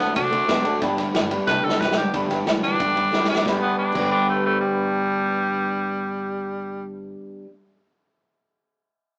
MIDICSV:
0, 0, Header, 1, 7, 480
1, 0, Start_track
1, 0, Key_signature, 1, "major"
1, 0, Tempo, 329489
1, 1200, Time_signature, 4, 2, 24, 8
1, 13381, End_track
2, 0, Start_track
2, 0, Title_t, "Upright piano"
2, 0, Program_c, 0, 0
2, 2, Note_on_c, 0, 78, 76
2, 7, Note_on_c, 0, 81, 86
2, 146, Note_off_c, 0, 78, 0
2, 148, Note_off_c, 0, 81, 0
2, 237, Note_on_c, 0, 74, 106
2, 237, Note_on_c, 0, 81, 114
2, 238, Note_on_c, 0, 78, 98
2, 383, Note_off_c, 0, 74, 0
2, 383, Note_off_c, 0, 81, 0
2, 384, Note_off_c, 0, 78, 0
2, 463, Note_on_c, 0, 74, 84
2, 467, Note_on_c, 0, 84, 92
2, 472, Note_on_c, 0, 78, 70
2, 616, Note_off_c, 0, 74, 0
2, 618, Note_off_c, 0, 84, 0
2, 620, Note_off_c, 0, 78, 0
2, 706, Note_on_c, 0, 74, 73
2, 708, Note_on_c, 0, 78, 62
2, 708, Note_on_c, 0, 84, 81
2, 857, Note_off_c, 0, 74, 0
2, 858, Note_off_c, 0, 78, 0
2, 858, Note_off_c, 0, 84, 0
2, 937, Note_on_c, 0, 74, 100
2, 939, Note_on_c, 0, 81, 105
2, 943, Note_on_c, 0, 78, 86
2, 1093, Note_off_c, 0, 74, 0
2, 1093, Note_off_c, 0, 81, 0
2, 1096, Note_off_c, 0, 78, 0
2, 1194, Note_on_c, 0, 74, 127
2, 1197, Note_on_c, 0, 79, 116
2, 1199, Note_on_c, 0, 83, 127
2, 1340, Note_off_c, 0, 74, 0
2, 1342, Note_off_c, 0, 79, 0
2, 1343, Note_off_c, 0, 83, 0
2, 1431, Note_on_c, 0, 83, 107
2, 1432, Note_on_c, 0, 74, 89
2, 1433, Note_on_c, 0, 79, 89
2, 1579, Note_off_c, 0, 74, 0
2, 1579, Note_off_c, 0, 83, 0
2, 1580, Note_off_c, 0, 79, 0
2, 1667, Note_on_c, 0, 74, 84
2, 1670, Note_on_c, 0, 83, 94
2, 1672, Note_on_c, 0, 79, 81
2, 1817, Note_off_c, 0, 74, 0
2, 1818, Note_off_c, 0, 83, 0
2, 1819, Note_off_c, 0, 79, 0
2, 1903, Note_on_c, 0, 79, 78
2, 1905, Note_on_c, 0, 83, 104
2, 1906, Note_on_c, 0, 74, 102
2, 2054, Note_off_c, 0, 79, 0
2, 2055, Note_off_c, 0, 83, 0
2, 2056, Note_off_c, 0, 74, 0
2, 2151, Note_on_c, 0, 81, 108
2, 2152, Note_on_c, 0, 79, 82
2, 2298, Note_off_c, 0, 79, 0
2, 2298, Note_off_c, 0, 81, 0
2, 2386, Note_on_c, 0, 81, 90
2, 2387, Note_on_c, 0, 74, 82
2, 2387, Note_on_c, 0, 79, 73
2, 2535, Note_off_c, 0, 81, 0
2, 2536, Note_off_c, 0, 74, 0
2, 2536, Note_off_c, 0, 79, 0
2, 2622, Note_on_c, 0, 79, 65
2, 2624, Note_on_c, 0, 74, 67
2, 2629, Note_on_c, 0, 83, 80
2, 2773, Note_off_c, 0, 79, 0
2, 2774, Note_off_c, 0, 74, 0
2, 2777, Note_off_c, 0, 83, 0
2, 2861, Note_on_c, 0, 74, 76
2, 2861, Note_on_c, 0, 79, 66
2, 2865, Note_on_c, 0, 86, 81
2, 3013, Note_off_c, 0, 74, 0
2, 3013, Note_off_c, 0, 79, 0
2, 3015, Note_off_c, 0, 86, 0
2, 3118, Note_on_c, 0, 74, 101
2, 3120, Note_on_c, 0, 83, 121
2, 3121, Note_on_c, 0, 79, 98
2, 3261, Note_off_c, 0, 74, 0
2, 3262, Note_off_c, 0, 83, 0
2, 3263, Note_off_c, 0, 79, 0
2, 3354, Note_on_c, 0, 79, 88
2, 3356, Note_on_c, 0, 74, 89
2, 3357, Note_on_c, 0, 83, 106
2, 3499, Note_off_c, 0, 79, 0
2, 3500, Note_off_c, 0, 74, 0
2, 3501, Note_off_c, 0, 83, 0
2, 3596, Note_on_c, 0, 83, 101
2, 3597, Note_on_c, 0, 79, 83
2, 3599, Note_on_c, 0, 74, 91
2, 3740, Note_off_c, 0, 83, 0
2, 3741, Note_off_c, 0, 79, 0
2, 3742, Note_off_c, 0, 74, 0
2, 3829, Note_on_c, 0, 74, 80
2, 3833, Note_on_c, 0, 81, 82
2, 3834, Note_on_c, 0, 79, 72
2, 3977, Note_off_c, 0, 74, 0
2, 3979, Note_off_c, 0, 79, 0
2, 3979, Note_off_c, 0, 81, 0
2, 4059, Note_on_c, 0, 74, 90
2, 4061, Note_on_c, 0, 79, 90
2, 4064, Note_on_c, 0, 86, 115
2, 4212, Note_off_c, 0, 74, 0
2, 4213, Note_off_c, 0, 79, 0
2, 4214, Note_off_c, 0, 86, 0
2, 4311, Note_on_c, 0, 83, 89
2, 4312, Note_on_c, 0, 74, 75
2, 4317, Note_on_c, 0, 79, 69
2, 4458, Note_off_c, 0, 74, 0
2, 4458, Note_off_c, 0, 83, 0
2, 4460, Note_off_c, 0, 79, 0
2, 4552, Note_on_c, 0, 79, 82
2, 4554, Note_on_c, 0, 74, 77
2, 4563, Note_on_c, 0, 83, 92
2, 4698, Note_off_c, 0, 79, 0
2, 4699, Note_off_c, 0, 74, 0
2, 4703, Note_off_c, 0, 83, 0
2, 4801, Note_on_c, 0, 74, 66
2, 4802, Note_on_c, 0, 79, 71
2, 4943, Note_off_c, 0, 74, 0
2, 4944, Note_off_c, 0, 79, 0
2, 5014, Note_on_c, 0, 74, 86
2, 5041, Note_on_c, 0, 79, 78
2, 5072, Note_on_c, 0, 83, 90
2, 5159, Note_off_c, 0, 74, 0
2, 5173, Note_off_c, 0, 79, 0
2, 5190, Note_off_c, 0, 83, 0
2, 5743, Note_on_c, 0, 74, 91
2, 5776, Note_on_c, 0, 79, 81
2, 5800, Note_on_c, 0, 83, 92
2, 10360, Note_off_c, 0, 74, 0
2, 10393, Note_off_c, 0, 79, 0
2, 10417, Note_off_c, 0, 83, 0
2, 13381, End_track
3, 0, Start_track
3, 0, Title_t, "Tenor saxophone"
3, 0, Program_c, 1, 66
3, 0, Note_on_c, 1, 59, 91
3, 227, Note_off_c, 1, 59, 0
3, 235, Note_on_c, 1, 62, 104
3, 1167, Note_off_c, 1, 62, 0
3, 2151, Note_on_c, 1, 71, 108
3, 2399, Note_on_c, 1, 69, 92
3, 2421, Note_off_c, 1, 71, 0
3, 2631, Note_on_c, 1, 71, 92
3, 2653, Note_off_c, 1, 69, 0
3, 2867, Note_off_c, 1, 71, 0
3, 2880, Note_on_c, 1, 67, 84
3, 3111, Note_off_c, 1, 67, 0
3, 3839, Note_on_c, 1, 62, 113
3, 4769, Note_off_c, 1, 62, 0
3, 4805, Note_on_c, 1, 62, 86
3, 5034, Note_off_c, 1, 62, 0
3, 5278, Note_on_c, 1, 59, 97
3, 5510, Note_off_c, 1, 59, 0
3, 5521, Note_on_c, 1, 62, 83
3, 5985, Note_off_c, 1, 62, 0
3, 6001, Note_on_c, 1, 62, 98
3, 6232, Note_off_c, 1, 62, 0
3, 6259, Note_on_c, 1, 57, 72
3, 6482, Note_off_c, 1, 57, 0
3, 6493, Note_on_c, 1, 57, 94
3, 6707, Note_off_c, 1, 57, 0
3, 6716, Note_on_c, 1, 55, 98
3, 9987, Note_off_c, 1, 55, 0
3, 13381, End_track
4, 0, Start_track
4, 0, Title_t, "Steel-string acoustic guitar"
4, 0, Program_c, 2, 25
4, 0, Note_on_c, 2, 69, 58
4, 7, Note_on_c, 2, 62, 58
4, 29, Note_on_c, 2, 60, 50
4, 220, Note_on_c, 2, 50, 86
4, 221, Note_off_c, 2, 60, 0
4, 231, Note_off_c, 2, 62, 0
4, 233, Note_on_c, 2, 54, 77
4, 234, Note_off_c, 2, 69, 0
4, 238, Note_on_c, 2, 60, 72
4, 248, Note_on_c, 2, 62, 81
4, 258, Note_on_c, 2, 69, 104
4, 442, Note_off_c, 2, 69, 0
4, 459, Note_on_c, 2, 69, 51
4, 469, Note_off_c, 2, 62, 0
4, 471, Note_off_c, 2, 50, 0
4, 477, Note_off_c, 2, 54, 0
4, 480, Note_off_c, 2, 60, 0
4, 486, Note_on_c, 2, 62, 45
4, 501, Note_on_c, 2, 60, 45
4, 701, Note_off_c, 2, 60, 0
4, 702, Note_on_c, 2, 54, 67
4, 710, Note_off_c, 2, 69, 0
4, 718, Note_off_c, 2, 62, 0
4, 719, Note_on_c, 2, 60, 78
4, 736, Note_on_c, 2, 62, 75
4, 743, Note_on_c, 2, 69, 82
4, 923, Note_off_c, 2, 69, 0
4, 941, Note_on_c, 2, 69, 60
4, 947, Note_off_c, 2, 62, 0
4, 951, Note_off_c, 2, 54, 0
4, 959, Note_off_c, 2, 60, 0
4, 964, Note_on_c, 2, 62, 58
4, 986, Note_on_c, 2, 60, 51
4, 1188, Note_on_c, 2, 43, 103
4, 1190, Note_off_c, 2, 69, 0
4, 1196, Note_on_c, 2, 50, 86
4, 1202, Note_off_c, 2, 62, 0
4, 1206, Note_off_c, 2, 60, 0
4, 1206, Note_on_c, 2, 55, 97
4, 1212, Note_on_c, 2, 59, 93
4, 1218, Note_on_c, 2, 62, 97
4, 1224, Note_on_c, 2, 67, 86
4, 1410, Note_off_c, 2, 67, 0
4, 1427, Note_off_c, 2, 62, 0
4, 1427, Note_on_c, 2, 67, 63
4, 1433, Note_off_c, 2, 43, 0
4, 1438, Note_off_c, 2, 50, 0
4, 1438, Note_off_c, 2, 59, 0
4, 1443, Note_off_c, 2, 55, 0
4, 1444, Note_on_c, 2, 62, 61
4, 1456, Note_on_c, 2, 59, 57
4, 1476, Note_on_c, 2, 55, 57
4, 1656, Note_off_c, 2, 55, 0
4, 1671, Note_off_c, 2, 59, 0
4, 1673, Note_off_c, 2, 67, 0
4, 1674, Note_on_c, 2, 55, 67
4, 1681, Note_off_c, 2, 62, 0
4, 1689, Note_on_c, 2, 59, 67
4, 1707, Note_on_c, 2, 62, 72
4, 1722, Note_on_c, 2, 67, 81
4, 1889, Note_off_c, 2, 67, 0
4, 1907, Note_off_c, 2, 62, 0
4, 1907, Note_on_c, 2, 67, 78
4, 1916, Note_off_c, 2, 55, 0
4, 1923, Note_off_c, 2, 59, 0
4, 1925, Note_on_c, 2, 62, 65
4, 1941, Note_on_c, 2, 59, 64
4, 1954, Note_on_c, 2, 55, 50
4, 2152, Note_off_c, 2, 67, 0
4, 2157, Note_off_c, 2, 55, 0
4, 2161, Note_off_c, 2, 62, 0
4, 2161, Note_on_c, 2, 43, 76
4, 2168, Note_on_c, 2, 50, 85
4, 2169, Note_off_c, 2, 59, 0
4, 2174, Note_on_c, 2, 55, 81
4, 2182, Note_on_c, 2, 62, 83
4, 2186, Note_on_c, 2, 59, 83
4, 2189, Note_on_c, 2, 67, 91
4, 2380, Note_off_c, 2, 67, 0
4, 2398, Note_on_c, 2, 67, 52
4, 2399, Note_off_c, 2, 43, 0
4, 2402, Note_off_c, 2, 62, 0
4, 2403, Note_off_c, 2, 50, 0
4, 2406, Note_off_c, 2, 55, 0
4, 2411, Note_off_c, 2, 59, 0
4, 2419, Note_on_c, 2, 62, 44
4, 2431, Note_on_c, 2, 59, 46
4, 2447, Note_on_c, 2, 55, 41
4, 2625, Note_off_c, 2, 55, 0
4, 2637, Note_off_c, 2, 67, 0
4, 2643, Note_off_c, 2, 59, 0
4, 2643, Note_on_c, 2, 55, 70
4, 2648, Note_off_c, 2, 62, 0
4, 2660, Note_on_c, 2, 59, 73
4, 2678, Note_on_c, 2, 62, 69
4, 2685, Note_on_c, 2, 67, 66
4, 2864, Note_off_c, 2, 67, 0
4, 2874, Note_off_c, 2, 62, 0
4, 2880, Note_off_c, 2, 55, 0
4, 2882, Note_on_c, 2, 67, 55
4, 2888, Note_off_c, 2, 59, 0
4, 2891, Note_on_c, 2, 62, 46
4, 2908, Note_on_c, 2, 59, 56
4, 2921, Note_on_c, 2, 55, 44
4, 3119, Note_off_c, 2, 67, 0
4, 3121, Note_on_c, 2, 43, 76
4, 3124, Note_off_c, 2, 55, 0
4, 3124, Note_off_c, 2, 62, 0
4, 3131, Note_on_c, 2, 50, 75
4, 3132, Note_off_c, 2, 59, 0
4, 3141, Note_on_c, 2, 55, 86
4, 3148, Note_on_c, 2, 62, 93
4, 3149, Note_on_c, 2, 59, 92
4, 3156, Note_on_c, 2, 67, 86
4, 3332, Note_off_c, 2, 67, 0
4, 3349, Note_on_c, 2, 67, 65
4, 3356, Note_off_c, 2, 62, 0
4, 3359, Note_off_c, 2, 43, 0
4, 3363, Note_off_c, 2, 50, 0
4, 3366, Note_off_c, 2, 59, 0
4, 3369, Note_off_c, 2, 55, 0
4, 3373, Note_on_c, 2, 62, 61
4, 3384, Note_on_c, 2, 59, 46
4, 3400, Note_on_c, 2, 55, 49
4, 3583, Note_off_c, 2, 55, 0
4, 3593, Note_off_c, 2, 67, 0
4, 3601, Note_off_c, 2, 59, 0
4, 3601, Note_on_c, 2, 55, 61
4, 3605, Note_off_c, 2, 62, 0
4, 3619, Note_on_c, 2, 59, 66
4, 3628, Note_on_c, 2, 62, 67
4, 3645, Note_on_c, 2, 67, 69
4, 3827, Note_off_c, 2, 67, 0
4, 3839, Note_off_c, 2, 55, 0
4, 3844, Note_off_c, 2, 62, 0
4, 3844, Note_on_c, 2, 67, 63
4, 3847, Note_off_c, 2, 59, 0
4, 3861, Note_on_c, 2, 62, 56
4, 3871, Note_on_c, 2, 59, 55
4, 3888, Note_on_c, 2, 55, 51
4, 4078, Note_off_c, 2, 55, 0
4, 4080, Note_off_c, 2, 67, 0
4, 4084, Note_off_c, 2, 59, 0
4, 4084, Note_on_c, 2, 43, 84
4, 4089, Note_off_c, 2, 62, 0
4, 4093, Note_on_c, 2, 50, 84
4, 4096, Note_on_c, 2, 55, 74
4, 4101, Note_on_c, 2, 59, 85
4, 4108, Note_on_c, 2, 62, 79
4, 4116, Note_on_c, 2, 67, 90
4, 4302, Note_off_c, 2, 67, 0
4, 4317, Note_off_c, 2, 62, 0
4, 4319, Note_on_c, 2, 67, 51
4, 4320, Note_off_c, 2, 43, 0
4, 4325, Note_off_c, 2, 50, 0
4, 4326, Note_off_c, 2, 55, 0
4, 4329, Note_off_c, 2, 59, 0
4, 4334, Note_on_c, 2, 62, 48
4, 4349, Note_on_c, 2, 59, 41
4, 4364, Note_on_c, 2, 55, 45
4, 4525, Note_off_c, 2, 55, 0
4, 4542, Note_on_c, 2, 55, 82
4, 4543, Note_off_c, 2, 59, 0
4, 4558, Note_off_c, 2, 67, 0
4, 4560, Note_off_c, 2, 62, 0
4, 4560, Note_on_c, 2, 59, 78
4, 4577, Note_on_c, 2, 62, 88
4, 4591, Note_on_c, 2, 67, 83
4, 4781, Note_off_c, 2, 67, 0
4, 4789, Note_off_c, 2, 55, 0
4, 4797, Note_off_c, 2, 62, 0
4, 4798, Note_off_c, 2, 59, 0
4, 4799, Note_on_c, 2, 67, 60
4, 4815, Note_on_c, 2, 62, 54
4, 4827, Note_on_c, 2, 59, 44
4, 4848, Note_on_c, 2, 55, 48
4, 5002, Note_on_c, 2, 43, 77
4, 5038, Note_off_c, 2, 67, 0
4, 5046, Note_off_c, 2, 62, 0
4, 5049, Note_on_c, 2, 50, 80
4, 5052, Note_off_c, 2, 59, 0
4, 5062, Note_off_c, 2, 55, 0
4, 5091, Note_on_c, 2, 55, 85
4, 5131, Note_on_c, 2, 59, 91
4, 5163, Note_on_c, 2, 62, 79
4, 5201, Note_on_c, 2, 67, 88
4, 5708, Note_off_c, 2, 43, 0
4, 5714, Note_on_c, 2, 43, 96
4, 5767, Note_off_c, 2, 50, 0
4, 5773, Note_on_c, 2, 50, 85
4, 5799, Note_off_c, 2, 55, 0
4, 5805, Note_on_c, 2, 55, 94
4, 5843, Note_off_c, 2, 59, 0
4, 5849, Note_on_c, 2, 59, 95
4, 5875, Note_off_c, 2, 62, 0
4, 5881, Note_on_c, 2, 62, 81
4, 5916, Note_off_c, 2, 67, 0
4, 5922, Note_on_c, 2, 67, 88
4, 10813, Note_off_c, 2, 43, 0
4, 10872, Note_off_c, 2, 50, 0
4, 10904, Note_off_c, 2, 55, 0
4, 10948, Note_off_c, 2, 59, 0
4, 10979, Note_off_c, 2, 62, 0
4, 11021, Note_off_c, 2, 67, 0
4, 13381, End_track
5, 0, Start_track
5, 0, Title_t, "Clean electric guitar"
5, 0, Program_c, 3, 27
5, 0, Note_on_c, 3, 50, 78
5, 5, Note_on_c, 3, 57, 80
5, 215, Note_off_c, 3, 50, 0
5, 220, Note_off_c, 3, 57, 0
5, 231, Note_on_c, 3, 50, 91
5, 237, Note_on_c, 3, 57, 101
5, 452, Note_off_c, 3, 50, 0
5, 455, Note_off_c, 3, 57, 0
5, 478, Note_on_c, 3, 50, 73
5, 482, Note_on_c, 3, 57, 85
5, 695, Note_off_c, 3, 50, 0
5, 697, Note_off_c, 3, 57, 0
5, 715, Note_on_c, 3, 50, 110
5, 722, Note_on_c, 3, 59, 112
5, 934, Note_off_c, 3, 50, 0
5, 937, Note_off_c, 3, 59, 0
5, 956, Note_on_c, 3, 50, 79
5, 965, Note_on_c, 3, 57, 85
5, 1173, Note_off_c, 3, 50, 0
5, 1178, Note_off_c, 3, 57, 0
5, 1187, Note_on_c, 3, 43, 98
5, 1196, Note_on_c, 3, 50, 103
5, 1409, Note_off_c, 3, 43, 0
5, 1413, Note_off_c, 3, 50, 0
5, 1438, Note_on_c, 3, 43, 80
5, 1446, Note_on_c, 3, 50, 83
5, 1654, Note_off_c, 3, 43, 0
5, 1658, Note_off_c, 3, 50, 0
5, 1669, Note_on_c, 3, 43, 85
5, 1680, Note_on_c, 3, 52, 96
5, 1889, Note_off_c, 3, 43, 0
5, 1895, Note_off_c, 3, 52, 0
5, 1908, Note_on_c, 3, 43, 71
5, 1919, Note_on_c, 3, 50, 83
5, 2129, Note_off_c, 3, 43, 0
5, 2134, Note_off_c, 3, 50, 0
5, 2161, Note_on_c, 3, 43, 100
5, 2170, Note_on_c, 3, 50, 93
5, 2375, Note_off_c, 3, 43, 0
5, 2379, Note_off_c, 3, 50, 0
5, 2391, Note_on_c, 3, 43, 71
5, 2396, Note_on_c, 3, 50, 88
5, 2610, Note_off_c, 3, 43, 0
5, 2612, Note_off_c, 3, 50, 0
5, 2638, Note_on_c, 3, 43, 100
5, 2644, Note_on_c, 3, 52, 112
5, 2853, Note_off_c, 3, 43, 0
5, 2856, Note_off_c, 3, 52, 0
5, 2871, Note_on_c, 3, 43, 79
5, 2883, Note_on_c, 3, 50, 104
5, 3090, Note_off_c, 3, 43, 0
5, 3096, Note_off_c, 3, 50, 0
5, 3105, Note_on_c, 3, 43, 93
5, 3110, Note_on_c, 3, 50, 99
5, 3327, Note_off_c, 3, 43, 0
5, 3329, Note_off_c, 3, 50, 0
5, 3347, Note_on_c, 3, 43, 71
5, 3357, Note_on_c, 3, 50, 73
5, 3568, Note_off_c, 3, 43, 0
5, 3573, Note_off_c, 3, 50, 0
5, 3590, Note_on_c, 3, 43, 76
5, 3596, Note_on_c, 3, 52, 85
5, 3809, Note_off_c, 3, 43, 0
5, 3812, Note_off_c, 3, 52, 0
5, 3835, Note_on_c, 3, 43, 72
5, 3841, Note_on_c, 3, 52, 85
5, 4052, Note_off_c, 3, 43, 0
5, 4055, Note_off_c, 3, 52, 0
5, 4083, Note_on_c, 3, 43, 79
5, 4088, Note_on_c, 3, 50, 83
5, 4296, Note_off_c, 3, 43, 0
5, 4298, Note_off_c, 3, 50, 0
5, 4319, Note_on_c, 3, 43, 68
5, 4325, Note_on_c, 3, 50, 73
5, 4534, Note_off_c, 3, 43, 0
5, 4537, Note_off_c, 3, 50, 0
5, 4557, Note_on_c, 3, 43, 99
5, 4563, Note_on_c, 3, 52, 101
5, 4773, Note_off_c, 3, 43, 0
5, 4776, Note_off_c, 3, 52, 0
5, 4792, Note_on_c, 3, 43, 78
5, 4800, Note_on_c, 3, 52, 91
5, 5011, Note_off_c, 3, 43, 0
5, 5014, Note_off_c, 3, 52, 0
5, 5024, Note_on_c, 3, 55, 102
5, 5042, Note_on_c, 3, 59, 93
5, 5057, Note_on_c, 3, 62, 111
5, 5068, Note_on_c, 3, 67, 119
5, 5082, Note_on_c, 3, 71, 109
5, 5737, Note_off_c, 3, 55, 0
5, 5743, Note_on_c, 3, 55, 94
5, 5751, Note_off_c, 3, 59, 0
5, 5757, Note_on_c, 3, 59, 91
5, 5767, Note_off_c, 3, 62, 0
5, 5773, Note_on_c, 3, 62, 96
5, 5783, Note_off_c, 3, 67, 0
5, 5789, Note_on_c, 3, 67, 112
5, 5793, Note_off_c, 3, 71, 0
5, 5799, Note_on_c, 3, 71, 102
5, 10842, Note_off_c, 3, 55, 0
5, 10856, Note_off_c, 3, 59, 0
5, 10872, Note_off_c, 3, 62, 0
5, 10887, Note_off_c, 3, 67, 0
5, 10897, Note_off_c, 3, 71, 0
5, 13381, End_track
6, 0, Start_track
6, 0, Title_t, "Upright bass"
6, 0, Program_c, 4, 32
6, 239, Note_on_c, 4, 48, 83
6, 533, Note_off_c, 4, 48, 0
6, 715, Note_on_c, 4, 45, 93
6, 1010, Note_off_c, 4, 45, 0
6, 1197, Note_on_c, 4, 31, 86
6, 1492, Note_off_c, 4, 31, 0
6, 1686, Note_on_c, 4, 31, 90
6, 1978, Note_off_c, 4, 31, 0
6, 2153, Note_on_c, 4, 36, 93
6, 2302, Note_off_c, 4, 36, 0
6, 2400, Note_on_c, 4, 38, 85
6, 2546, Note_off_c, 4, 38, 0
6, 2630, Note_on_c, 4, 35, 84
6, 2927, Note_off_c, 4, 35, 0
6, 3117, Note_on_c, 4, 31, 92
6, 3470, Note_off_c, 4, 31, 0
6, 3598, Note_on_c, 4, 38, 88
6, 3950, Note_off_c, 4, 38, 0
6, 4082, Note_on_c, 4, 40, 91
6, 4433, Note_off_c, 4, 40, 0
6, 4556, Note_on_c, 4, 40, 85
6, 4909, Note_off_c, 4, 40, 0
6, 5037, Note_on_c, 4, 31, 88
6, 5171, Note_off_c, 4, 31, 0
6, 5759, Note_on_c, 4, 31, 98
6, 10376, Note_off_c, 4, 31, 0
6, 13381, End_track
7, 0, Start_track
7, 0, Title_t, "Drums"
7, 2, Note_on_c, 9, 38, 36
7, 2, Note_on_c, 9, 51, 58
7, 148, Note_off_c, 9, 38, 0
7, 148, Note_off_c, 9, 51, 0
7, 231, Note_on_c, 9, 51, 89
7, 237, Note_on_c, 9, 36, 127
7, 377, Note_off_c, 9, 51, 0
7, 383, Note_off_c, 9, 36, 0
7, 474, Note_on_c, 9, 51, 65
7, 620, Note_off_c, 9, 51, 0
7, 711, Note_on_c, 9, 38, 110
7, 711, Note_on_c, 9, 51, 86
7, 714, Note_on_c, 9, 36, 80
7, 857, Note_off_c, 9, 38, 0
7, 857, Note_off_c, 9, 51, 0
7, 860, Note_off_c, 9, 36, 0
7, 946, Note_on_c, 9, 51, 64
7, 1092, Note_off_c, 9, 51, 0
7, 1188, Note_on_c, 9, 38, 32
7, 1188, Note_on_c, 9, 51, 75
7, 1193, Note_on_c, 9, 36, 122
7, 1334, Note_off_c, 9, 38, 0
7, 1334, Note_off_c, 9, 51, 0
7, 1339, Note_off_c, 9, 36, 0
7, 1429, Note_on_c, 9, 38, 37
7, 1429, Note_on_c, 9, 51, 68
7, 1574, Note_off_c, 9, 38, 0
7, 1574, Note_off_c, 9, 51, 0
7, 1670, Note_on_c, 9, 38, 96
7, 1670, Note_on_c, 9, 51, 78
7, 1815, Note_off_c, 9, 38, 0
7, 1815, Note_off_c, 9, 51, 0
7, 1909, Note_on_c, 9, 51, 67
7, 2054, Note_off_c, 9, 51, 0
7, 2146, Note_on_c, 9, 38, 76
7, 2150, Note_on_c, 9, 36, 127
7, 2291, Note_off_c, 9, 38, 0
7, 2296, Note_off_c, 9, 36, 0
7, 2467, Note_on_c, 9, 38, 93
7, 2612, Note_off_c, 9, 38, 0
7, 2633, Note_on_c, 9, 36, 89
7, 2635, Note_on_c, 9, 38, 81
7, 2778, Note_off_c, 9, 36, 0
7, 2781, Note_off_c, 9, 38, 0
7, 2795, Note_on_c, 9, 38, 114
7, 2941, Note_off_c, 9, 38, 0
7, 3114, Note_on_c, 9, 36, 105
7, 3117, Note_on_c, 9, 51, 88
7, 3260, Note_off_c, 9, 36, 0
7, 3262, Note_off_c, 9, 51, 0
7, 3359, Note_on_c, 9, 38, 31
7, 3359, Note_on_c, 9, 51, 63
7, 3505, Note_off_c, 9, 38, 0
7, 3505, Note_off_c, 9, 51, 0
7, 3597, Note_on_c, 9, 38, 106
7, 3597, Note_on_c, 9, 51, 69
7, 3743, Note_off_c, 9, 38, 0
7, 3743, Note_off_c, 9, 51, 0
7, 3843, Note_on_c, 9, 51, 60
7, 3989, Note_off_c, 9, 51, 0
7, 4079, Note_on_c, 9, 36, 126
7, 4080, Note_on_c, 9, 51, 91
7, 4225, Note_off_c, 9, 36, 0
7, 4226, Note_off_c, 9, 51, 0
7, 4326, Note_on_c, 9, 51, 61
7, 4472, Note_off_c, 9, 51, 0
7, 4562, Note_on_c, 9, 38, 67
7, 4708, Note_off_c, 9, 38, 0
7, 4725, Note_on_c, 9, 38, 80
7, 4871, Note_off_c, 9, 38, 0
7, 4882, Note_on_c, 9, 38, 100
7, 5027, Note_off_c, 9, 38, 0
7, 5038, Note_on_c, 9, 36, 102
7, 5040, Note_on_c, 9, 38, 88
7, 5184, Note_off_c, 9, 36, 0
7, 5185, Note_off_c, 9, 38, 0
7, 5758, Note_on_c, 9, 36, 100
7, 5758, Note_on_c, 9, 49, 81
7, 5904, Note_off_c, 9, 36, 0
7, 5904, Note_off_c, 9, 49, 0
7, 13381, End_track
0, 0, End_of_file